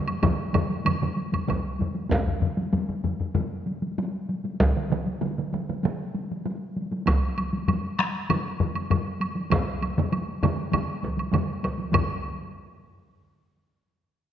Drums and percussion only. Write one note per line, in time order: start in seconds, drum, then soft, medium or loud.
0.08 taiko high medium
0.08 high woodblock soft
0.23 taiko medium
0.23 taiko low-mid medium
0.23 taiko mid loud
0.23 taiko high medium
0.23 high woodblock soft
0.54 taiko low-mid loud
0.54 taiko mid loud
0.54 taiko high medium
0.54 high woodblock soft
0.70 taiko high medium
0.85 taiko low-mid medium
0.85 taiko mid medium
0.85 taiko high medium
0.85 high woodblock medium
1.02 taiko low-mid medium
1.02 taiko mid medium
1.17 taiko high medium
1.32 taiko low-mid medium
1.32 taiko mid medium
1.32 taiko high medium
1.32 high woodblock soft
1.48 taiko medium
1.48 taiko low-mid medium
1.48 taiko mid medium
1.48 taiko high medium
1.48 high woodblock soft
1.79 taiko low-mid medium
1.79 taiko mid medium
1.79 taiko high medium
1.95 taiko high medium
2.10 taiko loud
2.10 taiko low-mid medium
2.10 taiko high medium
2.27 taiko low-mid medium
2.42 taiko low-mid medium
2.42 taiko high medium
2.57 taiko high medium
2.73 taiko low-mid medium
2.73 taiko high medium
2.89 taiko low-mid medium
3.04 taiko low-mid medium
3.04 taiko high medium
3.20 taiko low-mid medium
3.35 taiko low-mid loud
3.35 taiko high medium
3.67 taiko high medium
3.82 taiko high medium
3.98 taiko high medium
4.29 taiko high medium
4.45 taiko high medium
4.60 taiko loud
4.60 taiko mid medium
4.60 taiko high medium
4.76 taiko mid medium
4.90 taiko mid medium
4.90 taiko high medium
5.06 taiko high medium
5.21 taiko mid medium
5.21 taiko high medium
5.38 taiko mid medium
5.53 taiko mid medium
5.53 taiko high medium
5.70 taiko mid medium
5.83 taiko mid loud
5.83 taiko high medium
6.15 taiko high medium
6.31 taiko high medium
6.46 taiko high medium
6.76 taiko high medium
6.91 taiko high medium
7.07 taiko loud
7.07 taiko high medium
7.07 high woodblock soft
7.38 taiko high medium
7.38 high woodblock soft
7.53 taiko high medium
7.68 taiko low-mid medium
7.68 taiko high medium
7.68 high woodblock soft
7.99 taiko rim medium
7.99 taiko high medium
7.99 high woodblock soft
8.29 taiko low-mid loud
8.29 taiko high medium
8.29 high woodblock medium
8.60 taiko low-mid loud
8.60 taiko high medium
8.75 taiko high medium
8.75 high woodblock soft
8.90 taiko low-mid loud
8.90 taiko high medium
8.90 high woodblock soft
9.20 taiko high medium
9.20 high woodblock soft
9.36 taiko high medium
9.51 taiko loud
9.51 taiko low-mid loud
9.51 taiko mid medium
9.51 taiko high medium
9.51 high woodblock medium
9.82 taiko high medium
9.82 high woodblock soft
9.97 taiko low-mid medium
9.97 taiko mid loud
9.97 taiko high medium
10.12 taiko high medium
10.12 high woodblock soft
10.43 taiko low-mid loud
10.43 taiko mid loud
10.43 taiko high medium
10.43 high woodblock soft
10.57 taiko high medium
10.72 taiko low-mid loud
10.72 taiko mid loud
10.72 taiko high medium
10.72 high woodblock soft
11.03 taiko medium
11.03 taiko high medium
11.17 taiko high medium
11.17 high woodblock soft
11.33 taiko low-mid medium
11.33 taiko mid loud
11.33 taiko high medium
11.33 high woodblock soft
11.63 taiko medium
11.63 taiko high medium
11.63 high woodblock soft
11.78 taiko high medium
11.92 taiko medium
11.92 taiko low-mid loud
11.92 taiko mid medium
11.92 taiko high medium
11.92 high woodblock medium